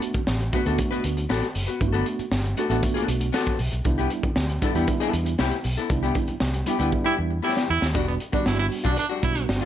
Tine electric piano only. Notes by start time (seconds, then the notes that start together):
Already playing: A3 B3 D4 F#4
0.53 A3 B3 D4 F#4
0.66 A3 B3 D4 F#4
1.80 A3 B3 D4 E4
1.88 F#4
2.57 A3 B3 D4 F#4
2.70 A3 B3 D4 F#4
3.85 G3 B3 D4 E4
4.62 G3 B3 D4 E4
4.74 G3 B3 D4 E4
5.89 G3 B3 D4 E4
6.66 G3 B3 D4 E4
6.79 G3 B3 D4 E4
7.94 G3 B3 D4 F#4
8.33 G3 B3 D4 F#4
9.22 G3 B3 D4 F#4